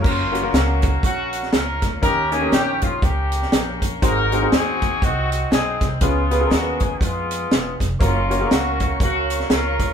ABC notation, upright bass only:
X:1
M:4/4
L:1/8
Q:"Swing" 1/4=120
K:F#
V:1 name="Upright bass" clef=bass
F,,,2 C,,2 A,,,2 C,, =D,, | D,,2 A,,,2 C,,2 A,,,2 | G,,,2 D,,2 ^B,,,2 =B,,, ^B,,, | C,,2 D,,2 E,,2 =E,,, ^E,,, |
F,,,2 C,,2 C,,2 C,, =D,, |]